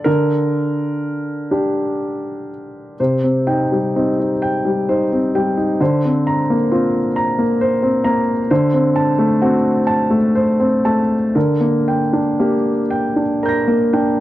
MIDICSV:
0, 0, Header, 1, 2, 480
1, 0, Start_track
1, 0, Key_signature, -3, "minor"
1, 0, Tempo, 972447
1, 30, Time_signature, 6, 3, 24, 8
1, 1950, Tempo, 913242
1, 5310, Tempo, 1020408
1, 7125, End_track
2, 0, Start_track
2, 0, Title_t, "Grand piano"
2, 0, Program_c, 0, 0
2, 0, Control_c, 0, 64, 127
2, 22, Note_on_c, 0, 70, 62
2, 28, Note_on_c, 0, 50, 50
2, 39, Control_c, 0, 64, 0
2, 140, Control_c, 0, 64, 127
2, 746, Note_on_c, 0, 62, 36
2, 749, Note_on_c, 0, 67, 41
2, 1227, Note_off_c, 0, 70, 0
2, 1454, Note_off_c, 0, 50, 0
2, 1456, Note_off_c, 0, 62, 0
2, 1457, Note_off_c, 0, 67, 0
2, 1480, Note_on_c, 0, 48, 40
2, 1480, Note_on_c, 0, 72, 37
2, 1482, Control_c, 0, 64, 0
2, 1560, Control_c, 0, 64, 127
2, 1597, Note_on_c, 0, 60, 32
2, 1713, Note_on_c, 0, 63, 33
2, 1713, Note_on_c, 0, 79, 38
2, 1785, Note_off_c, 0, 60, 0
2, 1819, Note_off_c, 0, 63, 0
2, 1836, Note_on_c, 0, 55, 33
2, 1857, Note_off_c, 0, 72, 0
2, 1954, Note_on_c, 0, 60, 34
2, 1956, Note_on_c, 0, 63, 35
2, 2025, Note_off_c, 0, 55, 0
2, 2071, Note_off_c, 0, 63, 0
2, 2079, Note_on_c, 0, 63, 31
2, 2097, Note_off_c, 0, 79, 0
2, 2149, Note_off_c, 0, 60, 0
2, 2197, Note_on_c, 0, 79, 43
2, 2299, Note_off_c, 0, 63, 0
2, 2318, Note_on_c, 0, 55, 33
2, 2442, Note_on_c, 0, 72, 40
2, 2444, Note_on_c, 0, 63, 35
2, 2510, Note_off_c, 0, 55, 0
2, 2549, Note_off_c, 0, 63, 0
2, 2565, Note_on_c, 0, 60, 36
2, 2583, Note_off_c, 0, 79, 0
2, 2686, Note_on_c, 0, 55, 36
2, 2686, Note_on_c, 0, 79, 42
2, 2755, Note_off_c, 0, 60, 0
2, 2803, Note_on_c, 0, 63, 37
2, 2826, Note_off_c, 0, 72, 0
2, 2876, Note_off_c, 0, 55, 0
2, 2903, Note_off_c, 0, 48, 0
2, 2911, Note_off_c, 0, 63, 0
2, 2925, Note_off_c, 0, 79, 0
2, 2925, Note_on_c, 0, 50, 48
2, 2928, Note_on_c, 0, 72, 43
2, 2929, Control_c, 0, 64, 0
2, 3020, Control_c, 0, 64, 127
2, 3054, Note_on_c, 0, 60, 37
2, 3168, Note_on_c, 0, 82, 43
2, 3240, Note_off_c, 0, 60, 0
2, 3291, Note_on_c, 0, 58, 38
2, 3309, Note_off_c, 0, 72, 0
2, 3403, Note_on_c, 0, 65, 44
2, 3404, Note_on_c, 0, 60, 41
2, 3474, Note_off_c, 0, 58, 0
2, 3542, Note_off_c, 0, 82, 0
2, 3588, Note_off_c, 0, 60, 0
2, 3638, Note_on_c, 0, 82, 48
2, 3755, Note_on_c, 0, 58, 41
2, 3775, Note_off_c, 0, 65, 0
2, 3873, Note_on_c, 0, 72, 46
2, 3940, Note_off_c, 0, 58, 0
2, 3986, Note_on_c, 0, 60, 48
2, 4010, Note_off_c, 0, 82, 0
2, 4102, Note_on_c, 0, 58, 44
2, 4102, Note_on_c, 0, 82, 50
2, 4175, Note_off_c, 0, 60, 0
2, 4248, Note_off_c, 0, 72, 0
2, 4292, Note_off_c, 0, 58, 0
2, 4321, Note_off_c, 0, 50, 0
2, 4340, Note_off_c, 0, 82, 0
2, 4344, Note_on_c, 0, 72, 55
2, 4346, Note_on_c, 0, 50, 59
2, 4349, Control_c, 0, 64, 0
2, 4435, Control_c, 0, 64, 127
2, 4465, Note_on_c, 0, 60, 44
2, 4582, Note_on_c, 0, 81, 52
2, 4654, Note_off_c, 0, 60, 0
2, 4701, Note_on_c, 0, 57, 45
2, 4726, Note_off_c, 0, 72, 0
2, 4824, Note_on_c, 0, 60, 53
2, 4824, Note_on_c, 0, 66, 51
2, 4892, Note_off_c, 0, 57, 0
2, 4965, Note_off_c, 0, 81, 0
2, 5015, Note_off_c, 0, 60, 0
2, 5061, Note_on_c, 0, 81, 57
2, 5184, Note_on_c, 0, 57, 43
2, 5211, Note_off_c, 0, 66, 0
2, 5314, Note_on_c, 0, 72, 51
2, 5379, Note_off_c, 0, 57, 0
2, 5430, Note_on_c, 0, 60, 48
2, 5448, Note_off_c, 0, 81, 0
2, 5548, Note_on_c, 0, 81, 52
2, 5550, Note_on_c, 0, 57, 43
2, 5617, Note_off_c, 0, 60, 0
2, 5689, Note_off_c, 0, 72, 0
2, 5738, Note_off_c, 0, 57, 0
2, 5768, Note_off_c, 0, 50, 0
2, 5785, Note_on_c, 0, 70, 41
2, 5786, Note_off_c, 0, 81, 0
2, 5786, Note_on_c, 0, 50, 45
2, 5792, Control_c, 0, 64, 0
2, 5867, Control_c, 0, 64, 127
2, 5904, Note_on_c, 0, 58, 37
2, 6032, Note_on_c, 0, 79, 40
2, 6097, Note_off_c, 0, 58, 0
2, 6151, Note_on_c, 0, 62, 36
2, 6170, Note_off_c, 0, 70, 0
2, 6275, Note_on_c, 0, 58, 37
2, 6278, Note_on_c, 0, 67, 41
2, 6341, Note_off_c, 0, 62, 0
2, 6414, Note_off_c, 0, 79, 0
2, 6463, Note_off_c, 0, 58, 0
2, 6515, Note_on_c, 0, 79, 40
2, 6636, Note_on_c, 0, 62, 35
2, 6659, Note_off_c, 0, 67, 0
2, 6761, Note_on_c, 0, 70, 38
2, 6762, Note_on_c, 0, 82, 33
2, 6774, Note_on_c, 0, 91, 31
2, 6788, Note_on_c, 0, 94, 33
2, 6827, Note_off_c, 0, 62, 0
2, 6877, Note_on_c, 0, 58, 39
2, 6900, Note_off_c, 0, 79, 0
2, 6998, Note_on_c, 0, 79, 42
2, 6999, Note_on_c, 0, 62, 36
2, 7066, Note_off_c, 0, 58, 0
2, 7125, Note_off_c, 0, 50, 0
2, 7125, Note_off_c, 0, 62, 0
2, 7125, Note_off_c, 0, 70, 0
2, 7125, Note_off_c, 0, 79, 0
2, 7125, Note_off_c, 0, 82, 0
2, 7125, Note_off_c, 0, 91, 0
2, 7125, Note_off_c, 0, 94, 0
2, 7125, End_track
0, 0, End_of_file